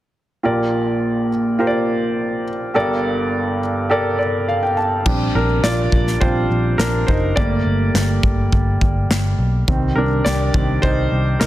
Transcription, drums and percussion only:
5.06 kick medium
5.06 crash medium
5.64 snare medium
5.64 clap medium
5.92 kick medium
6.07 snare soft
6.21 kick medium
6.80 snare medium
6.80 clap medium
7.08 kick medium
7.37 kick medium
7.95 snare medium
7.95 clap medium
8.23 kick medium
8.53 kick medium
8.81 kick medium
9.11 snare medium
9.11 clap medium
9.68 kick medium
10.26 snare loud
10.26 clap medium
10.54 kick medium
10.83 kick medium
11.41 snare medium
11.41 clap medium

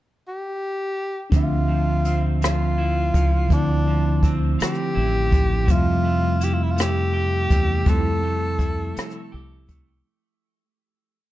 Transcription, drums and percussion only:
1.32 kick loud
1.32 closed hi-hat medium
2.05 closed hi-hat medium
2.42 cross-stick medium
2.42 closed hi-hat medium
3.14 kick medium
3.14 closed hi-hat medium
3.50 kick medium
3.50 closed hi-hat medium
4.23 kick medium
4.23 closed hi-hat medium
4.60 cross-stick medium
4.60 closed hi-hat medium
5.32 kick medium
5.32 closed hi-hat medium
5.68 kick loud
5.68 closed hi-hat medium
6.41 closed hi-hat medium
6.78 cross-stick medium
6.78 closed hi-hat medium
7.50 kick medium
7.50 closed hi-hat medium
7.86 kick medium
7.86 closed hi-hat medium
8.59 kick medium
8.59 closed hi-hat medium
8.97 cross-stick loud
8.97 closed hi-hat medium
9.69 kick medium
9.69 closed hi-hat medium

